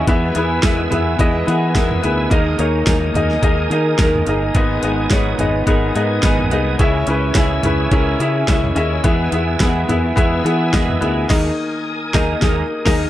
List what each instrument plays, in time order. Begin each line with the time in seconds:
0.07 fingered electric bass E2, clean electric guitar E3 G#3 B3 E4 G#4, felt piano E3 B3 E4 G#4 E5, tonewheel organ B4 G#5 E6, kick, closed hi-hat
0.35 fingered electric bass E2, felt piano B3 E4 G#4 B4, clean electric guitar B3 E4 G#4, closed hi-hat
0.62 fingered electric bass E2, clean electric guitar E3 G#3 B3 E4 G#4, felt piano B3 E4 G#4 E5, kick, snare, closed hi-hat
0.90 fingered electric bass E2, felt piano B3 E4 G#4 E5, clean electric guitar B3 E4 G#4, closed hi-hat, floor tom
1.19 fingered electric bass E2, clean electric guitar G#3 B3 E4 G#4, felt piano B3 E4 G#4 D#5, kick, closed hi-hat
1.47 fingered electric bass E3, felt piano B3 E4 G#4 F#5, clean electric guitar B3 E4 G#4, closed hi-hat
1.74 fingered electric bass E2, clean electric guitar E3 G#3 B3 E4 G#4, felt piano B3 E4 G#4 A#4, kick, snare, closed hi-hat
1.91 floor tom
2.02 fingered electric bass D2, felt piano B3 E4 G#4 B4, clean electric guitar B3 E4 G#4, closed hi-hat
2.30 fingered electric bass D#2, felt piano D#3 A#3 D#4 G#4 D#5, clean electric guitar D#3 G#3 D#4 G#4 A#4, tonewheel organ A#4 G#5 D#6, kick, closed hi-hat
2.58 fingered electric bass D#2, felt piano A#3 D#4 G#4 C#5, clean electric guitar D#4 G#4 A#4, closed hi-hat
2.86 fingered electric bass D#2, clean electric guitar D#3 G#3 D#4 G#4 A#4, felt piano A#3 D#4 G#4 A#4, kick, snare, closed hi-hat
3.14 fingered electric bass D#2, felt piano A#3 D#4 G#4 D#5, clean electric guitar D#4 G#4 A#4, closed hi-hat, floor tom
3.31 snare
3.42 fingered electric bass D#2, clean electric guitar G#3 D#4 G#4 A#4, felt piano A#3 D#4 G#4 D#5, kick, closed hi-hat
3.70 fingered electric bass D#3, felt piano A#3 D#4 G#4 D#5, clean electric guitar D#4 G#4 A#4, closed hi-hat
3.98 fingered electric bass D#2, clean electric guitar D#3 G#3 D#4 G#4 A#4, felt piano A#3 D#4 G#4 A#4, kick, snare, closed hi-hat
4.14 floor tom
4.26 fingered electric bass G1, felt piano A#3 D#4 G#4 D#5, clean electric guitar D#4 G#4 A#4, closed hi-hat
4.55 fingered electric bass G#1, clean electric guitar G#2 D#3 G#3 B3 D#4 G#4, felt piano G#2 B3 D#4 G#4 D#5, tonewheel organ B4, kick, closed hi-hat
4.82 fingered electric bass G#1, clean electric guitar G#3 B3 D#4 G#4, felt piano B3 D#4 G#4 D#5, closed hi-hat
5.10 fingered electric bass G#1, clean electric guitar G#2 D#3 G#3 B3 D#4 G#4, felt piano B3 D#4 G#4 C#5, kick, snare, closed hi-hat
5.39 fingered electric bass G#1, clean electric guitar G#3 B3 D#4 G#4, felt piano B3 D#4 G#4 D#5, closed hi-hat, floor tom
5.66 fingered electric bass G#1, clean electric guitar G#3 B3 D#4 G#4, felt piano B3 D#4 G#4 A#4, kick, closed hi-hat
5.95 fingered electric bass G#2, clean electric guitar G#3 B3 D#4 G#4, felt piano B3 D#4 G#4 D#5, closed hi-hat
6.23 fingered electric bass G#1, clean electric guitar G#2 D#3 G#3 B3 D#4 G#4, felt piano B3 D#4 G#4 B4, kick, snare, closed hi-hat
6.39 floor tom
6.51 fingered electric bass C2, clean electric guitar G#3 B3 D#4 G#4, felt piano B3 D#4 G#4 D#5, closed hi-hat
6.79 fingered electric bass C#2, clean electric guitar C#3 G#3 C#4 E4 G#4, felt piano C#3 C#4 E4 G#4 E5, tonewheel organ C#5 E6, kick, closed hi-hat
7.07 fingered electric bass C#2, felt piano C#4 E4 G#4 B4, clean electric guitar C#4 E4 G#4, closed hi-hat
7.35 fingered electric bass C#2, clean electric guitar C#3 G#3 C#4 E4 G#4, felt piano C#4 E4 G#4 E5, kick, snare, closed hi-hat
7.63 fingered electric bass C#2, felt piano C#4 E4 G#4 B4, clean electric guitar C#4 E4 G#4, closed hi-hat, floor tom
7.91 fingered electric bass C#2, clean electric guitar G#3 C#4 E4 G#4, felt piano C#4 E4 G#4 A#4, kick, closed hi-hat
8.20 fingered electric bass C#3, felt piano C#4 E4 G#4 E5, clean electric guitar C#4 E4 G#4, closed hi-hat
8.47 fingered electric bass C#2, clean electric guitar C#3 G#3 C#4 E4 G#4, felt piano C#4 E4 G#4 E5 G#5, kick, snare, closed hi-hat
8.64 felt piano E5, floor tom
8.75 fingered electric bass D#2, felt piano C#4 E4 G#4 D#5 E5, clean electric guitar C#4 E4 G#4, closed hi-hat
9.04 fingered electric bass E2, clean electric guitar E3 G#3 B3 E4 G#4, felt piano E3 B3 E4 G#4 E5, tonewheel organ B4 G#5, kick, closed hi-hat
9.32 fingered electric bass E2, felt piano B3 E4 G#4 E5, clean electric guitar B3 E4 G#4, closed hi-hat
9.60 fingered electric bass E2, clean electric guitar E3 G#3 B3 E4 G#4, felt piano B3 E4 G#4 F#5, kick, snare, closed hi-hat
9.88 fingered electric bass E2, felt piano B3 E4 G#4 E5, clean electric guitar B3 E4 G#4, closed hi-hat, floor tom
10.16 fingered electric bass E2, clean electric guitar G#3 B3 E4 G#4, felt piano B3 E4 G#4 E5, kick, closed hi-hat
10.44 fingered electric bass E3, felt piano B3 E4 G#4 F#5, clean electric guitar B3 E4 G#4, closed hi-hat
10.72 fingered electric bass E2, clean electric guitar E3 G#3 B3 E4 G#4, felt piano B3 E4 G#4 D#5, kick, snare, closed hi-hat
10.89 floor tom
11.00 fingered electric bass D2, felt piano B3 E4 G#4 E5, clean electric guitar B3 E4 G#4, closed hi-hat
11.28 fingered electric bass D#2, clean electric guitar D#3 G#3 D#4 G#4 A#4, felt piano D#3 A#3 D#4 G#4 D#5, tonewheel organ A#4 D#6, kick, snare, crash
12.14 fingered electric bass D#2, felt piano A#3 D#4 G#4 D#5, clean electric guitar D#4 G#4 A#4, kick, snare
12.41 fingered electric bass D#2, clean electric guitar G#3 D#4 G#4 A#4, felt piano A#3 D#4 G#4 D#5, kick, snare
12.85 fingered electric bass D#2, felt piano A#3 D#4 G#4 D#5, clean electric guitar D#4 G#4 A#4, kick, snare, crash